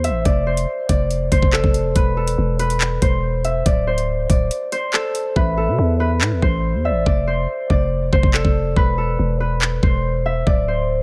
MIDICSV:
0, 0, Header, 1, 5, 480
1, 0, Start_track
1, 0, Tempo, 425532
1, 287, Time_signature, 4, 2, 24, 8
1, 12440, End_track
2, 0, Start_track
2, 0, Title_t, "Soft synth lead"
2, 0, Program_c, 0, 80
2, 6041, Note_on_c, 0, 76, 110
2, 6959, Note_off_c, 0, 76, 0
2, 7719, Note_on_c, 0, 74, 76
2, 7951, Note_off_c, 0, 74, 0
2, 12440, End_track
3, 0, Start_track
3, 0, Title_t, "Harp"
3, 0, Program_c, 1, 46
3, 0, Note_on_c, 1, 69, 68
3, 0, Note_on_c, 1, 72, 83
3, 47, Note_on_c, 1, 76, 77
3, 286, Note_on_c, 1, 74, 102
3, 522, Note_off_c, 1, 72, 0
3, 526, Note_on_c, 1, 72, 74
3, 1001, Note_off_c, 1, 74, 0
3, 1005, Note_on_c, 1, 74, 92
3, 1083, Note_off_c, 1, 69, 0
3, 1482, Note_off_c, 1, 72, 0
3, 1487, Note_on_c, 1, 72, 86
3, 1726, Note_on_c, 1, 69, 90
3, 1990, Note_off_c, 1, 76, 0
3, 2207, Note_on_c, 1, 71, 104
3, 2275, Note_off_c, 1, 72, 0
3, 2442, Note_off_c, 1, 69, 0
3, 2447, Note_on_c, 1, 69, 76
3, 2922, Note_off_c, 1, 71, 0
3, 2926, Note_on_c, 1, 71, 87
3, 3088, Note_off_c, 1, 74, 0
3, 3406, Note_on_c, 1, 72, 73
3, 3473, Note_off_c, 1, 71, 0
3, 3887, Note_on_c, 1, 76, 78
3, 4128, Note_on_c, 1, 74, 100
3, 4363, Note_off_c, 1, 72, 0
3, 4368, Note_on_c, 1, 72, 69
3, 4843, Note_off_c, 1, 74, 0
3, 4847, Note_on_c, 1, 74, 95
3, 4924, Note_off_c, 1, 69, 0
3, 5322, Note_off_c, 1, 72, 0
3, 5327, Note_on_c, 1, 72, 84
3, 5567, Note_on_c, 1, 69, 82
3, 5830, Note_off_c, 1, 76, 0
3, 6047, Note_on_c, 1, 71, 96
3, 6115, Note_off_c, 1, 72, 0
3, 6283, Note_off_c, 1, 69, 0
3, 6288, Note_on_c, 1, 69, 70
3, 6763, Note_off_c, 1, 71, 0
3, 6768, Note_on_c, 1, 71, 91
3, 6930, Note_off_c, 1, 74, 0
3, 7246, Note_on_c, 1, 72, 79
3, 7314, Note_off_c, 1, 71, 0
3, 7726, Note_on_c, 1, 76, 76
3, 7966, Note_on_c, 1, 74, 104
3, 8200, Note_off_c, 1, 72, 0
3, 8205, Note_on_c, 1, 72, 78
3, 8681, Note_off_c, 1, 74, 0
3, 8685, Note_on_c, 1, 74, 96
3, 8765, Note_off_c, 1, 69, 0
3, 9163, Note_off_c, 1, 72, 0
3, 9167, Note_on_c, 1, 72, 84
3, 9407, Note_on_c, 1, 69, 86
3, 9670, Note_off_c, 1, 76, 0
3, 9887, Note_on_c, 1, 71, 102
3, 9955, Note_off_c, 1, 72, 0
3, 10123, Note_off_c, 1, 69, 0
3, 10128, Note_on_c, 1, 69, 77
3, 10603, Note_off_c, 1, 71, 0
3, 10607, Note_on_c, 1, 71, 85
3, 10768, Note_off_c, 1, 74, 0
3, 11087, Note_on_c, 1, 72, 73
3, 11155, Note_off_c, 1, 71, 0
3, 11570, Note_on_c, 1, 76, 78
3, 11809, Note_on_c, 1, 74, 95
3, 12044, Note_off_c, 1, 72, 0
3, 12048, Note_on_c, 1, 72, 72
3, 12440, Note_off_c, 1, 69, 0
3, 12440, Note_off_c, 1, 72, 0
3, 12440, Note_off_c, 1, 74, 0
3, 12440, Note_off_c, 1, 76, 0
3, 12440, End_track
4, 0, Start_track
4, 0, Title_t, "808-style bass"
4, 0, Program_c, 2, 38
4, 0, Note_on_c, 2, 40, 99
4, 106, Note_on_c, 2, 33, 100
4, 123, Note_off_c, 2, 40, 0
4, 277, Note_off_c, 2, 33, 0
4, 287, Note_on_c, 2, 29, 117
4, 748, Note_off_c, 2, 29, 0
4, 1006, Note_on_c, 2, 29, 100
4, 1467, Note_off_c, 2, 29, 0
4, 1487, Note_on_c, 2, 29, 107
4, 1602, Note_off_c, 2, 29, 0
4, 1607, Note_on_c, 2, 29, 99
4, 1837, Note_off_c, 2, 29, 0
4, 1847, Note_on_c, 2, 29, 102
4, 2192, Note_off_c, 2, 29, 0
4, 2207, Note_on_c, 2, 28, 112
4, 2668, Note_off_c, 2, 28, 0
4, 2686, Note_on_c, 2, 28, 112
4, 3378, Note_off_c, 2, 28, 0
4, 3407, Note_on_c, 2, 28, 106
4, 4098, Note_off_c, 2, 28, 0
4, 4127, Note_on_c, 2, 26, 112
4, 4818, Note_off_c, 2, 26, 0
4, 4846, Note_on_c, 2, 26, 98
4, 5077, Note_off_c, 2, 26, 0
4, 6047, Note_on_c, 2, 33, 106
4, 6407, Note_on_c, 2, 48, 98
4, 6424, Note_off_c, 2, 33, 0
4, 6521, Note_off_c, 2, 48, 0
4, 6527, Note_on_c, 2, 40, 108
4, 7006, Note_on_c, 2, 45, 104
4, 7023, Note_off_c, 2, 40, 0
4, 7126, Note_on_c, 2, 40, 95
4, 7143, Note_off_c, 2, 45, 0
4, 7241, Note_off_c, 2, 40, 0
4, 7247, Note_on_c, 2, 33, 109
4, 7606, Note_on_c, 2, 40, 100
4, 7623, Note_off_c, 2, 33, 0
4, 7785, Note_on_c, 2, 33, 104
4, 7802, Note_off_c, 2, 40, 0
4, 7957, Note_off_c, 2, 33, 0
4, 7967, Note_on_c, 2, 29, 113
4, 8428, Note_off_c, 2, 29, 0
4, 8686, Note_on_c, 2, 29, 106
4, 9147, Note_off_c, 2, 29, 0
4, 9167, Note_on_c, 2, 29, 107
4, 9282, Note_off_c, 2, 29, 0
4, 9288, Note_on_c, 2, 29, 99
4, 9518, Note_off_c, 2, 29, 0
4, 9527, Note_on_c, 2, 29, 99
4, 9873, Note_off_c, 2, 29, 0
4, 9887, Note_on_c, 2, 28, 114
4, 10348, Note_off_c, 2, 28, 0
4, 10368, Note_on_c, 2, 28, 108
4, 11059, Note_off_c, 2, 28, 0
4, 11087, Note_on_c, 2, 28, 106
4, 11778, Note_off_c, 2, 28, 0
4, 11807, Note_on_c, 2, 26, 113
4, 12440, Note_off_c, 2, 26, 0
4, 12440, End_track
5, 0, Start_track
5, 0, Title_t, "Drums"
5, 47, Note_on_c, 9, 42, 79
5, 160, Note_off_c, 9, 42, 0
5, 286, Note_on_c, 9, 42, 89
5, 287, Note_on_c, 9, 36, 115
5, 399, Note_off_c, 9, 42, 0
5, 400, Note_off_c, 9, 36, 0
5, 647, Note_on_c, 9, 42, 82
5, 759, Note_off_c, 9, 42, 0
5, 1006, Note_on_c, 9, 36, 89
5, 1006, Note_on_c, 9, 42, 82
5, 1119, Note_off_c, 9, 36, 0
5, 1119, Note_off_c, 9, 42, 0
5, 1247, Note_on_c, 9, 42, 79
5, 1360, Note_off_c, 9, 42, 0
5, 1486, Note_on_c, 9, 36, 94
5, 1487, Note_on_c, 9, 42, 84
5, 1599, Note_off_c, 9, 36, 0
5, 1600, Note_off_c, 9, 42, 0
5, 1607, Note_on_c, 9, 36, 101
5, 1720, Note_off_c, 9, 36, 0
5, 1725, Note_on_c, 9, 39, 118
5, 1838, Note_off_c, 9, 39, 0
5, 1847, Note_on_c, 9, 36, 99
5, 1960, Note_off_c, 9, 36, 0
5, 1966, Note_on_c, 9, 42, 80
5, 2079, Note_off_c, 9, 42, 0
5, 2206, Note_on_c, 9, 36, 116
5, 2206, Note_on_c, 9, 42, 91
5, 2319, Note_off_c, 9, 36, 0
5, 2319, Note_off_c, 9, 42, 0
5, 2566, Note_on_c, 9, 42, 81
5, 2679, Note_off_c, 9, 42, 0
5, 2926, Note_on_c, 9, 42, 86
5, 3039, Note_off_c, 9, 42, 0
5, 3046, Note_on_c, 9, 42, 76
5, 3159, Note_off_c, 9, 42, 0
5, 3166, Note_on_c, 9, 39, 117
5, 3166, Note_on_c, 9, 42, 73
5, 3278, Note_off_c, 9, 39, 0
5, 3278, Note_off_c, 9, 42, 0
5, 3406, Note_on_c, 9, 36, 97
5, 3406, Note_on_c, 9, 42, 75
5, 3519, Note_off_c, 9, 36, 0
5, 3519, Note_off_c, 9, 42, 0
5, 3887, Note_on_c, 9, 42, 80
5, 3999, Note_off_c, 9, 42, 0
5, 4127, Note_on_c, 9, 36, 115
5, 4127, Note_on_c, 9, 42, 89
5, 4240, Note_off_c, 9, 36, 0
5, 4240, Note_off_c, 9, 42, 0
5, 4487, Note_on_c, 9, 42, 82
5, 4600, Note_off_c, 9, 42, 0
5, 4846, Note_on_c, 9, 36, 90
5, 4846, Note_on_c, 9, 42, 82
5, 4959, Note_off_c, 9, 36, 0
5, 4959, Note_off_c, 9, 42, 0
5, 5087, Note_on_c, 9, 42, 75
5, 5200, Note_off_c, 9, 42, 0
5, 5327, Note_on_c, 9, 42, 84
5, 5439, Note_off_c, 9, 42, 0
5, 5565, Note_on_c, 9, 39, 112
5, 5678, Note_off_c, 9, 39, 0
5, 5807, Note_on_c, 9, 42, 79
5, 5920, Note_off_c, 9, 42, 0
5, 6047, Note_on_c, 9, 36, 115
5, 6160, Note_off_c, 9, 36, 0
5, 7007, Note_on_c, 9, 39, 111
5, 7119, Note_off_c, 9, 39, 0
5, 7247, Note_on_c, 9, 36, 95
5, 7360, Note_off_c, 9, 36, 0
5, 7967, Note_on_c, 9, 36, 112
5, 8080, Note_off_c, 9, 36, 0
5, 8686, Note_on_c, 9, 36, 92
5, 8799, Note_off_c, 9, 36, 0
5, 9167, Note_on_c, 9, 36, 97
5, 9279, Note_off_c, 9, 36, 0
5, 9287, Note_on_c, 9, 36, 104
5, 9400, Note_off_c, 9, 36, 0
5, 9406, Note_on_c, 9, 39, 118
5, 9519, Note_off_c, 9, 39, 0
5, 9527, Note_on_c, 9, 36, 99
5, 9640, Note_off_c, 9, 36, 0
5, 9887, Note_on_c, 9, 36, 113
5, 10000, Note_off_c, 9, 36, 0
5, 10847, Note_on_c, 9, 39, 111
5, 10960, Note_off_c, 9, 39, 0
5, 11087, Note_on_c, 9, 36, 95
5, 11200, Note_off_c, 9, 36, 0
5, 11807, Note_on_c, 9, 36, 110
5, 11920, Note_off_c, 9, 36, 0
5, 12440, End_track
0, 0, End_of_file